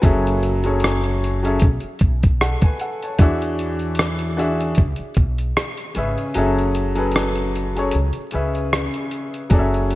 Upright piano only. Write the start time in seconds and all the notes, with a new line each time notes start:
Already playing: B5
0.02 F#3 C#4 G#4 A4 E5
0.64 F#3 C#4 G#4 A4 C#5
1.43 F#3 C#4 G#4 A4 E5
2.41 A4 F#5
2.64 B4 G#5
2.81 A4 F#5
3.03 C#5 A5
3.18 E3 D4 F#4 G#4 E5
4.37 E3 D4 F#4 G#4 E5
5.95 C#3 C#4 G#4 B4 E5
6.35 F#3 C#4 G#4 A4 E5
6.95 F#3 C#4 G#4 A4 B4
7.75 F#3 C#4 G#4 A4 C#5
8.32 C#3 C#4 G#4 B4 E5
9.50 F#3 C#4 G#4 A4 D5
9.59 E5